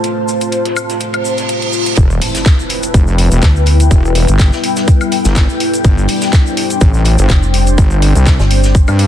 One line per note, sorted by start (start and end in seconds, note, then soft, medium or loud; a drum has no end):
0.00 1.94 A3 medium
0.00 1.94 C4 medium
0.00 1.98 F4 medium
0.00 1.96 G4 medium
0.00 1.94 C5 medium
0.00 1.97 C5 medium
0.00 3.53 A5 medium
0.00 closed hi-hat medium
0.04 closed hi-hat medium
0.04 shaker soft
0.28 closed hi-hat medium
0.28 shaker medium
0.41 closed hi-hat medium
0.41 shaker soft
0.52 closed hi-hat medium
0.52 shaker soft
0.65 snare medium
0.65 closed hi-hat soft
0.76 closed hi-hat medium
0.76 high woodblock medium
0.76 shaker medium
0.90 snare soft
0.90 closed hi-hat medium
0.90 shaker soft
1.00 closed hi-hat medium
1.00 reverse cymbal medium
1.00 shaker soft
1.13 closed hi-hat soft
1.13 high woodblock medium
1.25 closed hi-hat medium
1.25 shaker medium
1.38 snare soft
1.38 closed hi-hat medium
1.38 shaker soft
1.49 closed hi-hat medium
1.49 shaker soft
1.62 closed hi-hat soft
1.73 closed hi-hat medium
1.73 shaker medium
1.86 closed hi-hat medium
1.86 shaker soft
1.97 2.20 E1 loud
1.97 9.07 G3 medium
1.97 5.81 B3 medium
1.97 7.40 E4 medium
1.97 5.81 E4 medium
1.97 3.89 B4 medium
1.97 kick loud
1.97 closed hi-hat medium
1.97 impact medium
1.97 shaker medium
2.10 5.85 B4 medium
2.10 shaker soft
2.21 open hi-hat medium
2.21 open hi-hat loud
2.35 snare medium
2.35 closed hi-hat medium
2.35 shaker medium
2.46 kick loud
2.46 snare loud
2.46 clap loud
2.46 closed hi-hat medium
2.46 shaker medium
2.57 9.07 G5 medium
2.57 closed hi-hat soft
2.57 shaker soft
2.69 closed hi-hat medium
2.69 open hi-hat loud
2.83 closed hi-hat medium
2.83 shaker medium
2.94 3.29 F1 loud
2.94 kick loud
2.94 closed hi-hat medium
2.94 shaker medium
3.07 shaker soft
3.18 closed hi-hat medium
3.18 open hi-hat loud
3.31 3.41 E1 loud
3.31 closed hi-hat medium
3.31 shaker medium
3.42 3.89 D2 loud
3.42 kick loud
3.42 snare loud
3.42 clap loud
3.42 closed hi-hat medium
3.42 closed hi-hat loud
3.42 shaker medium
3.56 shaker soft
3.66 closed hi-hat medium
3.66 open hi-hat loud
3.80 closed hi-hat medium
3.80 shaker medium
3.91 4.26 E1 loud
3.91 5.83 A4 medium
3.91 kick loud
3.91 closed hi-hat medium
3.91 shaker medium
4.05 shaker soft
4.15 closed hi-hat medium
4.15 open hi-hat loud
4.28 4.50 G1 loud
4.28 closed hi-hat medium
4.28 shaker medium
4.39 kick loud
4.39 snare loud
4.39 clap loud
4.39 closed hi-hat medium
4.39 shaker medium
4.52 snare medium
4.52 shaker soft
4.64 closed hi-hat medium
4.64 open hi-hat loud
4.76 snare soft
4.76 closed hi-hat medium
4.76 shaker medium
4.88 kick loud
4.88 closed hi-hat medium
4.88 shaker medium
5.01 closed hi-hat soft
5.01 high woodblock medium
5.01 shaker soft
5.12 closed hi-hat medium
5.12 open hi-hat loud
5.25 5.47 G1 loud
5.25 snare soft
5.25 closed hi-hat medium
5.25 shaker medium
5.35 kick loud
5.35 snare loud
5.35 clap loud
5.35 closed hi-hat medium
5.35 shaker medium
5.49 closed hi-hat soft
5.49 shaker soft
5.60 closed hi-hat medium
5.60 open hi-hat loud
5.74 closed hi-hat medium
5.74 shaker medium
5.84 6.07 G1 loud
5.84 9.07 C4 medium
5.84 9.07 D4 medium
5.84 7.76 C5 medium
5.84 kick loud
5.84 closed hi-hat medium
5.84 closed hi-hat loud
5.84 shaker medium
5.98 shaker soft
6.08 open hi-hat medium
6.08 open hi-hat loud
6.22 snare medium
6.22 closed hi-hat medium
6.22 shaker medium
6.27 9.07 C5 medium
6.33 kick loud
6.33 snare loud
6.33 clap loud
6.33 closed hi-hat medium
6.33 shaker medium
6.46 closed hi-hat soft
6.46 shaker soft
6.57 closed hi-hat medium
6.57 open hi-hat loud
6.70 closed hi-hat medium
6.70 shaker medium
6.81 7.17 A1 loud
6.81 kick loud
6.81 closed hi-hat loud
6.81 closed hi-hat medium
6.81 shaker medium
6.94 shaker soft
7.05 closed hi-hat medium
7.05 open hi-hat loud
7.18 7.28 G1 loud
7.18 closed hi-hat medium
7.18 shaker medium
7.29 7.76 F1 loud
7.29 kick loud
7.29 snare loud
7.29 clap loud
7.29 closed hi-hat medium
7.29 shaker medium
7.43 shaker soft
7.54 closed hi-hat medium
7.54 open hi-hat loud
7.67 closed hi-hat medium
7.67 shaker medium
7.78 8.13 G1 loud
7.78 9.07 D5 medium
7.78 kick loud
7.78 closed hi-hat medium
7.78 closed hi-hat loud
7.78 shaker medium
7.91 shaker soft
8.02 closed hi-hat medium
8.02 open hi-hat loud
8.15 8.38 C2 loud
8.15 closed hi-hat soft
8.15 shaker medium
8.26 kick loud
8.26 snare loud
8.26 clap loud
8.26 closed hi-hat medium
8.26 shaker medium
8.40 8.86 G1 loud
8.40 snare soft
8.40 shaker soft
8.51 closed hi-hat medium
8.51 open hi-hat loud
8.63 snare soft
8.63 closed hi-hat medium
8.63 shaker medium
8.75 kick loud
8.75 closed hi-hat medium
8.75 shaker medium
8.88 9.07 G2 medium
8.88 closed hi-hat soft
8.88 high woodblock medium
8.88 shaker soft
8.99 closed hi-hat medium
8.99 open hi-hat loud